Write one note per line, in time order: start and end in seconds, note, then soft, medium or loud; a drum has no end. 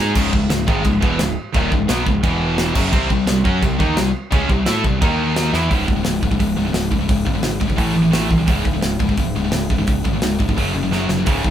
0.00 0.14 G#2 loud
0.00 0.15 G#3 medium
0.00 0.15 D#4 loud
0.00 0.15 G#4 loud
0.14 0.31 C#1 medium
0.14 0.32 C#2 medium
0.14 0.32 G#2 loud
0.14 0.32 C#3 loud
0.14 kick loud
0.14 china medium
0.14 crash loud
0.33 0.49 C#1 medium
0.33 0.47 C#2 medium
0.33 0.47 G#2 medium
0.33 kick medium
0.49 0.67 C#1 medium
0.49 0.63 C#2 medium
0.49 0.64 G#2 medium
0.49 snare loud
0.49 china medium
0.67 0.83 G#1 medium
0.67 0.83 G#2 medium
0.67 0.84 D#3 medium
0.67 0.84 G#3 loud
0.67 kick loud
0.84 1.01 C#1 medium
0.84 0.98 C#2 medium
0.84 0.98 G#2 medium
0.84 kick medium
0.84 china medium
1.01 1.18 E1 medium
1.01 1.18 E2 medium
1.01 1.19 B2 medium
1.01 1.19 E3 loud
1.01 kick loud
1.19 1.36 C#1 medium
1.19 1.33 C#2 medium
1.19 1.33 G#2 medium
1.19 snare loud
1.19 china medium
1.54 1.71 D#1 medium
1.54 1.71 D#2 medium
1.54 1.71 A#2 loud
1.54 1.72 D#3 loud
1.54 kick loud
1.54 china medium
1.71 1.88 C#1 medium
1.71 1.85 C#2 medium
1.71 1.86 G#2 medium
1.71 kick medium
1.88 2.05 B1 loud
1.88 2.05 B2 loud
1.88 2.05 F#3 loud
1.88 2.05 B3 loud
1.88 snare loud
1.88 china medium
2.06 2.23 C#1 medium
2.06 2.20 C#2 medium
2.06 2.20 G#2 medium
2.06 kick loud
2.23 2.72 E1 loud
2.23 2.74 E2 loud
2.23 2.75 B2 loud
2.23 2.75 E3 loud
2.23 kick loud
2.23 china medium
2.58 snare loud
2.58 china medium
2.75 2.91 F#1 loud
2.75 2.92 F#2 medium
2.75 2.92 C#3 loud
2.75 2.92 F#3 loud
2.75 kick loud
2.75 crash loud
2.92 3.09 C2 medium
2.92 3.09 C3 medium
2.92 3.09 G3 loud
2.92 3.09 C4 loud
2.92 kick loud
2.92 china medium
3.10 3.25 C2 medium
3.10 3.24 C3 medium
3.10 3.24 G3 medium
3.10 kick medium
3.26 3.43 C2 medium
3.26 3.41 C3 medium
3.26 3.41 G3 medium
3.26 snare loud
3.26 china medium
3.44 3.61 F#2 medium
3.44 3.61 F#3 medium
3.44 3.61 C#4 medium
3.44 3.62 F#4 loud
3.44 kick loud
3.62 3.78 C2 medium
3.62 3.76 C3 medium
3.62 3.76 G3 medium
3.62 kick medium
3.62 china medium
3.79 3.96 D#2 loud
3.79 3.96 D#3 loud
3.79 3.96 A#3 loud
3.79 3.96 D#4 loud
3.79 kick loud
3.96 4.13 C2 medium
3.96 4.10 C3 medium
3.96 4.10 G3 medium
3.96 snare loud
3.96 china medium
4.31 4.48 C#2 medium
4.31 4.48 C#3 medium
4.31 4.48 G#3 medium
4.31 4.49 C#4 loud
4.31 kick loud
4.31 china medium
4.49 4.65 C2 medium
4.49 4.63 C3 medium
4.49 4.63 G3 medium
4.49 kick medium
4.66 4.83 A2 medium
4.66 4.84 A3 medium
4.66 4.84 E4 medium
4.66 4.84 A4 loud
4.66 snare loud
4.66 china medium
4.84 5.00 C2 medium
4.84 4.98 C3 medium
4.84 4.99 G3 medium
4.84 kick loud
5.01 5.50 D#2 loud
5.01 5.53 D#3 medium
5.01 5.53 A#3 loud
5.01 5.53 D#4 loud
5.01 kick loud
5.01 china medium
5.36 snare loud
5.36 china medium
5.53 5.69 E2 loud
5.53 5.69 E3 medium
5.53 5.70 B3 loud
5.53 5.71 E4 loud
5.53 snare medium
5.69 5.87 C#1 medium
5.69 5.86 C#2 medium
5.69 5.86 G#2 medium
5.69 5.87 C#3 medium
5.69 kick loud
5.69 open hi-hat medium
5.87 6.04 C#1 medium
5.87 5.96 C#2 medium
5.87 5.95 G#2 medium
5.87 kick medium
5.96 6.04 C#2 medium
5.96 6.05 G#2 medium
6.05 6.21 C#1 medium
6.05 6.21 C#2 medium
6.05 6.21 G#2 medium
6.05 snare loud
6.05 open hi-hat medium
6.22 6.39 C#1 medium
6.22 6.30 C#2 medium
6.22 6.30 G#2 medium
6.22 kick medium
6.31 6.38 C#2 medium
6.31 6.38 G#2 medium
6.31 kick medium
6.39 6.56 C#1 medium
6.39 6.55 C#2 medium
6.39 6.55 G#2 medium
6.39 kick medium
6.39 open hi-hat medium
6.57 6.73 C#1 medium
6.57 6.66 C#2 medium
6.57 6.65 G#2 medium
6.67 6.73 C#2 medium
6.67 6.74 G#2 medium
6.74 7.07 C#1 medium
6.74 6.90 C#2 medium
6.74 6.90 G#2 medium
6.74 snare loud
6.74 open hi-hat medium
6.91 7.00 C#2 medium
6.91 7.00 G#2 medium
6.91 kick medium
7.01 7.07 C#2 medium
7.01 7.08 G#2 medium
7.08 7.26 C#1 medium
7.08 7.25 C#2 medium
7.08 7.24 G#2 medium
7.08 kick loud
7.08 open hi-hat medium
7.25 7.41 G#1 medium
7.25 7.33 C#2 medium
7.25 7.33 G#2 medium
7.25 kick medium
7.34 7.41 C#2 medium
7.34 7.41 G#2 medium
7.42 7.76 G#1 medium
7.42 7.59 C#2 medium
7.42 7.59 G#2 medium
7.42 snare loud
7.42 open hi-hat medium
7.60 7.67 C#2 medium
7.60 7.66 G#2 medium
7.60 kick medium
7.67 7.76 C#2 medium
7.67 7.77 G#2 medium
7.67 kick medium
7.76 7.94 A1 medium
7.76 7.94 A2 medium
7.76 7.94 E3 medium
7.76 7.95 A3 loud
7.76 kick loud
7.76 open hi-hat medium
7.94 8.12 A1 medium
7.94 8.02 A2 medium
7.94 8.01 E3 medium
8.03 8.10 A2 medium
8.03 8.11 E3 medium
8.12 8.29 A1 medium
8.12 8.28 A2 medium
8.12 8.28 E3 medium
8.12 8.29 A3 loud
8.12 snare loud
8.12 open hi-hat medium
8.29 8.47 C2 medium
8.29 8.37 A2 medium
8.29 8.37 E3 medium
8.29 kick medium
8.38 8.47 A2 medium
8.38 8.47 E3 medium
8.47 8.65 C#1 loud
8.47 8.63 C#2 medium
8.47 8.63 G#2 medium
8.47 8.65 C#3 loud
8.47 kick loud
8.47 open hi-hat medium
8.64 8.82 C#1 medium
8.64 8.73 C#2 medium
8.64 8.72 G#2 medium
8.64 kick medium
8.73 8.81 C#2 medium
8.73 8.82 G#2 medium
8.82 8.99 C#1 medium
8.82 8.98 C#2 medium
8.82 8.98 G#2 medium
8.82 snare loud
8.82 open hi-hat medium
8.99 9.17 C#1 medium
8.99 9.09 C#2 medium
8.99 9.08 G#2 medium
8.99 kick medium
9.09 9.18 C#2 medium
9.09 9.18 G#2 medium
9.09 kick medium
9.17 9.34 C#1 loud
9.17 9.34 C#2 medium
9.17 9.34 G#2 medium
9.17 kick medium
9.17 open hi-hat medium
9.35 9.51 C#1 medium
9.35 9.44 C#2 medium
9.35 9.43 G#2 medium
9.44 9.51 C#2 medium
9.44 9.51 G#2 medium
9.52 9.86 C#1 medium
9.52 9.68 C#2 medium
9.52 9.68 G#2 medium
9.52 snare loud
9.52 open hi-hat medium
9.70 9.78 C#2 medium
9.70 9.77 G#2 medium
9.70 kick medium
9.78 9.86 C#2 medium
9.78 9.87 G#2 medium
9.87 10.04 C#1 medium
9.87 10.03 C#2 medium
9.87 10.03 G#2 medium
9.87 kick loud
9.87 open hi-hat medium
10.04 10.22 G#1 medium
10.04 10.12 C#2 medium
10.04 10.12 G#2 medium
10.04 kick medium
10.13 10.21 C#2 medium
10.13 10.21 G#2 medium
10.22 10.55 C#1 medium
10.22 10.38 C#2 medium
10.22 10.37 G#2 medium
10.22 snare loud
10.22 open hi-hat medium
10.39 10.47 C#2 medium
10.39 10.47 G#2 medium
10.39 kick medium
10.48 10.56 C#2 medium
10.48 10.56 G#2 medium
10.48 kick medium
10.57 10.74 F#1 medium
10.57 10.73 F#2 medium
10.57 10.73 C#3 loud
10.57 10.74 F#3 medium
10.57 kick medium
10.57 open hi-hat medium
10.74 10.90 F#1 medium
10.74 10.82 F#2 medium
10.74 10.82 C#3 medium
10.83 10.91 F#2 medium
10.83 10.92 C#3 medium
10.91 11.08 F#1 medium
10.91 11.08 F#2 medium
10.91 11.08 C#3 loud
10.91 11.09 F#3 loud
10.91 snare medium
11.09 11.26 F#1 medium
11.09 11.18 F#2 medium
11.09 11.18 C#3 medium
11.09 snare medium
11.19 11.26 F#2 medium
11.19 11.26 C#3 medium
11.26 11.43 C#1 medium
11.26 11.43 C#2 medium
11.26 11.43 G#2 medium
11.26 11.44 C#3 medium
11.26 kick loud
11.26 open hi-hat medium
11.44 11.50 C#1 medium
11.44 11.50 C#2 medium
11.44 11.50 G#2 medium
11.44 kick medium